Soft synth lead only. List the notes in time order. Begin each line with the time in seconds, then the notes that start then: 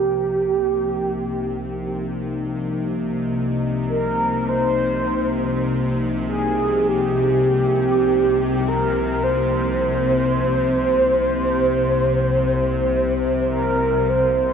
Already playing: G4
3.88 A#4
4.49 C5
6.27 G#4
6.88 G4
8.68 A#4
9.23 C5
13.50 A#4
14.09 C5